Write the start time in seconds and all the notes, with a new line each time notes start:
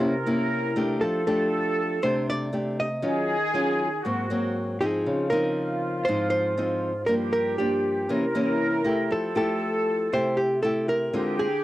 Already playing: G4
0.00 C3 A#3 C#4 E4 A#4
0.26 A#3 C#4 E4
0.76 A3 D4 G4
1.01 F3 A4
1.27 A3 D4 G4 A4
2.02 C3 A3 D4 G4 C5
2.30 D5
2.52 A3 D4 G4
2.80 D#5
3.01 D#3 F#3 C#4 F4 G#4
3.54 F#3 C#4 F4
4.03 G#2 F#3 A#3 C4 F#4
4.30 F#3 A#3 C4
4.81 F3 C4 D#4 G#4
5.04 C#3 F4
5.30 F3 C4 D#4 A#4
6.05 G#2 F3 C4 C5
6.09 D#4
6.30 C5
6.58 F3 C4 D#4
7.06 G2 F3 A#3 D4 G4 A#4
7.33 A#4
7.58 F3 A#3 D4 G4
8.09 C3 E3 A#3 C#4 A#4
8.35 E3 A#3 C#4
8.84 A3 E4 G4
9.10 F3 A4
9.35 A3 E4 G4 A4
10.13 C3 A3 E4 G4 C5
10.37 G4
10.63 A3 E4 G4 A4
10.89 A#4
11.12 D3 G#3 C4 F4 G4
11.39 G#4